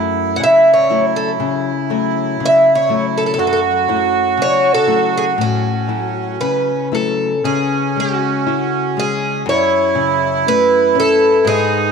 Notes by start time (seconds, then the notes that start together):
Already playing: F#2 F#3 A3 E4
0.36 C#3 F#5
0.43 E5
0.74 C#5
0.90 F#3 A3 E4
1.16 A4
1.40 C#3
1.90 F#3 A3 E4
2.40 C#3
2.46 E5
2.75 C#5
2.89 F#3 A3 E4
3.18 A4
3.26 A4
3.34 A4
3.38 F#2 F#4 A4
3.47 A4
3.53 A4
3.88 F#3 A3 E4
4.37 C#3
4.42 C#5
4.74 A4
4.87 F#3 A3 E4
5.17 G#4
5.38 A2 C#4 F#4
5.87 F#3 A3 E4
6.41 C#3 B4
6.92 F#3 A3 E4 A4
7.44 C#3 C#4 G#4
7.96 G#3 F#4
8.47 E4
8.97 G#3 G#4
9.46 F#2 E4 C#5
9.95 C#3
10.47 A3 B4
10.95 C#4
11.00 A4
11.45 G#2 D#4 G#4